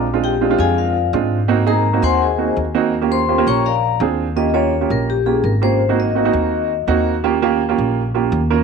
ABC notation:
X:1
M:4/4
L:1/16
Q:1/4=167
K:Ebmix
V:1 name="Vibraphone"
z2 [Gg]4 [A=dfa]2 [FBdf]4 z4 | z2 [Bb]4 [c_gac']2 [Acea]4 z4 | z2 [cc']4 [dgbd']2 [B=dfb]4 z4 | e2 d4 B2 G2 A2 B2 c2- |
c2 e12 z2 | z16 |]
V:2 name="Upright piano"
z [A,C=DF]2 z [A,CDF] [A,CDF]4- [A,CDF] z2 [A,CDF]3 z | [B,CE_G] z [B,CEA]2 z [B,CEG]3 z2 [B,CEG]3 z [B,CEG]2 | z [B,DFG]2 z [B,DFG] [B,DFG]3 z4 [C=DFA]3 z | [B,DFG] z [B,DFG]2 z [B,DFG]3 z2 [B,DFG]3 z [B,DFG]2 |
z [B,CE_G]2 z [B,CEG] [B,CEG]4- [B,CEG] z2 [B,CEG]3 z | [B,DFG] z [B,DFG]2 z [B,DFG]3 z2 [B,DFG]3 z [B,DFB]2 |]
V:3 name="Upright bass" clef=bass
B,,,6 F,,6 A,,4- | A,,6 E,,6 E,,4- | E,,6 B,,,6 E,,4- | E,,6 B,,,6 A,,,4- |
A,,,6 E,,6 E,,4- | E,,6 B,,,6 E,,4 |]